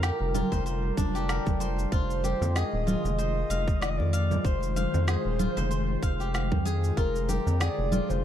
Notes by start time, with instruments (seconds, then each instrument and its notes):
Already playing: analog synth bass F2, ambient pad D3 G3 F4 A#4, guzheng F4 C5 D5 F5, soft synth lead A#4
0.03 guzheng G4, snare, shaker
0.21 analog synth bass F1
0.34 guzheng F4, high conga, low conga, shaker
0.52 analog synth bass F1, guzheng C5, kick, low conga, shaker
0.66 guzheng C5, shaker
0.97 analog synth bass F1, guzheng D4, kick, low conga, shaker
1.15 guzheng G4, shaker
1.29 guzheng A#4, snare, shaker
1.46 analog synth bass F1, kick, high bongo, high conga, low conga, shaker
1.60 guzheng C5, shaker
1.79 shaker
1.91 analog synth bass F1, ambient pad D#3, guzheng F4, soft synth lead C5, kick, shaker
2.08 ambient pad G#3, shaker
2.24 guzheng G4, high bongo, high conga, shaker
2.41 analog synth bass F2, low conga, shaker
2.55 guzheng G#4, soft synth lead D#5, snare, shaker
2.73 analog synth bass D#1
2.87 guzheng F4, high conga, low conga, shaker
3.04 analog synth bass F1, low conga, shaker
3.18 guzheng C5, soft synth lead D#5, shaker
3.50 analog synth bass F1, guzheng F5, high conga, shaker
3.68 kick, shaker
3.81 soft synth lead D5, guzheng D#5, snare, shaker
3.89 soft synth lead D#5
3.97 analog synth bass F2, soft synth lead D5, high bongo
4.06 ambient pad C5
4.13 guzheng F5, shaker
4.31 low conga, shaker
4.44 analog synth bass F1, soft synth lead C5, guzheng C5, kick, shaker
4.63 shaker
4.76 guzheng F5, high bongo, high conga, shaker
4.94 analog synth bass F2, low conga, shaker
5.07 guzheng G#4, snare, shaker
5.25 analog synth bass D#1
5.39 guzheng F4, high conga, low conga, shaker
5.57 analog synth bass F1, guzheng C5, low conga, shaker
5.71 guzheng C5, shaker
6.02 analog synth bass F1, guzheng F5, kick, shaker
6.20 guzheng G4, shaker
6.34 guzheng F5, snare, shaker
6.51 analog synth bass F2, kick, high bongo, high conga, low conga
6.65 guzheng G#4, shaker
6.84 shaker
6.97 analog synth bass F1, ambient pad D3, guzheng F4, soft synth lead A#4, kick, shaker
7.16 shaker
7.29 guzheng G4, ambient pad A#4, high bongo, high conga, shaker
7.47 analog synth bass F2, low conga, shaker
7.55 ambient pad F4
7.60 guzheng G#4, soft synth lead D5, snare, shaker
7.79 analog synth bass F1
7.92 guzheng F4, high conga, low conga, shaker
8.09 analog synth bass F1, soft synth lead C5, low conga, shaker